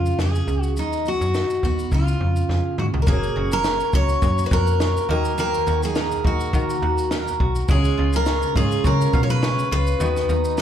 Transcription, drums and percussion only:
0.06 shaker soft
0.19 snare loud
0.19 shaker medium
0.35 shaker soft
0.48 shaker soft
0.63 shaker soft
0.77 shaker medium
0.93 shaker soft
1.06 shaker soft
1.22 shaker soft
1.34 snare medium
1.34 shaker medium
1.50 shaker soft
1.63 kick medium
1.63 shaker soft
1.79 shaker soft
1.92 kick medium
1.92 shaker medium
2.08 shaker soft
2.36 shaker soft
2.50 snare soft
2.78 mid tom medium
2.94 floor tom medium
3.07 kick loud
3.07 shaker medium
3.23 shaker soft
3.52 shaker medium
3.64 snare loud
3.64 shaker medium
3.80 shaker soft
3.93 kick medium
3.93 shaker medium
4.09 shaker medium
4.22 kick medium
4.22 shaker medium
4.38 shaker medium
4.51 kick medium
4.51 shaker soft
4.67 shaker soft
4.80 snare loud
4.80 shaker medium
4.97 shaker soft
5.25 shaker soft
5.38 shaker medium
5.54 shaker soft
5.67 shaker soft
5.83 shaker medium
5.95 snare loud
5.95 shaker medium
6.11 shaker soft
6.25 kick medium
6.40 shaker medium
6.53 kick medium
6.53 shaker medium
6.70 shaker medium
6.98 shaker soft
7.11 snare loud
7.11 shaker medium
7.28 shaker medium
7.40 kick medium
7.55 shaker soft
7.68 kick loud
7.68 shaker medium
7.84 shaker soft
8.13 shaker medium
8.26 snare loud
8.26 shaker medium
8.42 shaker soft
8.56 kick medium
8.56 shaker medium
8.72 shaker medium
8.84 kick medium
8.84 shaker medium
9.01 shaker medium
9.13 kick medium
9.13 shaker soft
9.29 shaker soft
9.43 snare loud
9.43 shaker medium
9.59 shaker medium
9.87 shaker medium
10.00 shaker medium
10.16 snare soft
10.16 shaker medium
10.29 shaker soft
10.45 shaker medium
10.58 snare loud
10.58 shaker medium

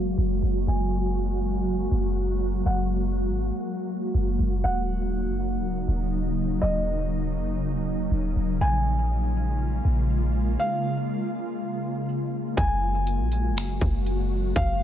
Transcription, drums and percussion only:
12.57 kick loud
12.57 closed hi-hat medium
13.07 closed hi-hat medium
13.32 closed hi-hat medium
13.57 finger snap loud
13.57 closed hi-hat medium
13.81 kick medium
13.81 closed hi-hat medium
14.06 closed hi-hat medium
14.56 kick loud
14.56 closed hi-hat medium

